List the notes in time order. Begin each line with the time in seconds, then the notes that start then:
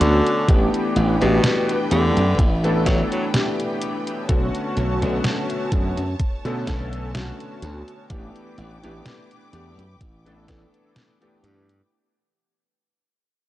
Already playing: D3 A3 B3 C#4 F#4 A5
0.00 D2 D3, closed hi-hat
0.26 closed hi-hat
0.48 A1 E3 A3 B3 D4 G4 B4 G5, kick, closed hi-hat
0.74 closed hi-hat
0.96 A1, closed hi-hat
1.21 A1 B2 E3 A3 B3 D4 G4, closed hi-hat
1.44 snare, closed hi-hat
1.69 closed hi-hat
1.90 E2 D3 E3 A3 B3 D4 G4, closed hi-hat
2.17 F#2, closed hi-hat
2.39 A1, kick, closed hi-hat
2.64 E3 A3 B3 D4 A4, closed hi-hat
2.86 F#3, kick, snare, closed hi-hat
3.12 F#3, closed hi-hat
3.33 E3 A3 B3 D4 G4, snare, closed hi-hat
3.60 closed hi-hat
3.81 closed hi-hat
4.07 closed hi-hat
4.29 B1 D3 A3 B3 C#4 F#4 C#5 A5, kick, closed hi-hat
4.55 closed hi-hat
4.77 B1, closed hi-hat
5.01 B1 D3 A3 B3 C#4 F#4, closed hi-hat
5.24 snare, closed hi-hat
5.50 closed hi-hat
5.72 F#2 A3 B3 C#4 F#4, kick, closed hi-hat
5.97 F#2, closed hi-hat
6.20 kick, closed hi-hat
6.45 B2 D3 A3 B3 C#4 A4, closed hi-hat
6.67 B1, kick, snare, closed hi-hat
6.93 closed hi-hat
7.14 D3 A3 B3 C#4 F#4, snare, closed hi-hat
7.40 closed hi-hat
7.62 D2, closed hi-hat
7.88 closed hi-hat
8.09 A1 E3 A3 B3 D4 G4 B4 G5 D6, kick, closed hi-hat
8.36 closed hi-hat
8.58 A1, closed hi-hat
8.83 A1 E3 A3 B3 D4 G4, closed hi-hat
9.06 snare, closed hi-hat
9.31 closed hi-hat
9.52 E2 E3 A3 B3 D4 G4, closed hi-hat
9.78 F#2, closed hi-hat
10.01 A1, kick, closed hi-hat
10.26 E3 A3 B3 D4 A4, closed hi-hat
10.48 E3 A3 B3 D4 A4, kick, snare, closed hi-hat
10.74 closed hi-hat
10.96 snare, closed hi-hat
11.21 E3 A3 B3 D4 G4, closed hi-hat
11.43 G2, closed hi-hat
11.69 closed hi-hat